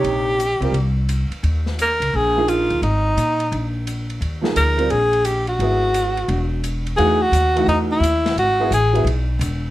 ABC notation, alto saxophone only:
X:1
M:4/4
L:1/8
Q:"Swing" 1/4=173
K:Ebdor
V:1 name="Alto saxophone"
=G4- G z3 | z2 B2 A2 F2 | E6 z2 | z2 B2 A2 =G _G- |
G6 z2 | [K:C#m] G F3 D E3 | F2 G2 z4 |]